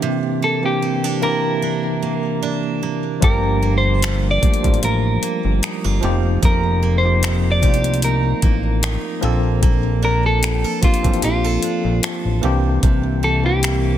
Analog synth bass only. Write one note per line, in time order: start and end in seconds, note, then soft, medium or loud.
3.23 4.39 G1 loud
4.43 4.51 A1 soft
4.64 4.81 A1 medium
4.83 5.18 A1 medium
5.45 5.61 G1 medium
5.85 6.01 G1 medium
6.03 6.38 F1 loud
6.43 7.64 F1 medium
7.63 8.34 C2 medium
8.43 8.97 A1 medium
9.23 10.65 A#1 medium
10.83 10.91 A1 soft
11.04 11.21 A1 medium
11.23 11.58 A#1 medium
11.84 12.01 A#1 medium
12.25 12.41 A1 medium
12.43 12.79 C2 loud
12.83 13.98 C2 loud